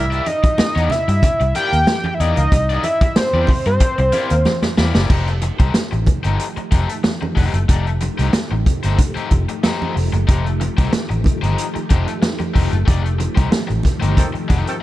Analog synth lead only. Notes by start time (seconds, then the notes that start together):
Already playing: E5
0.27 D#5
0.91 E5
1.56 G5
2.14 E5
2.20 D#5
2.84 E5
3.16 C5
3.66 C5